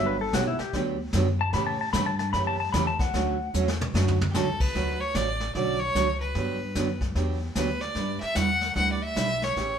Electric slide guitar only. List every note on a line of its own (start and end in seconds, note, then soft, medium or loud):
0.06 0.20 B4 loud
0.21 0.34 A4 loud
0.34 0.47 F#4 loud
0.47 0.60 E4 medium
0.60 0.81 G4 loud
1.41 1.53 A5 loud
1.54 1.66 B5 medium
1.67 1.80 A5 loud
1.81 1.92 A5 loud
1.93 2.06 B5 loud
2.06 2.18 A5 loud
2.19 2.32 A5 medium
2.33 2.46 B5 medium
2.47 2.59 A5 loud
2.60 2.72 A5 loud
2.72 2.86 B5 medium
2.87 3.00 A5 loud
3.00 3.78 F#5 loud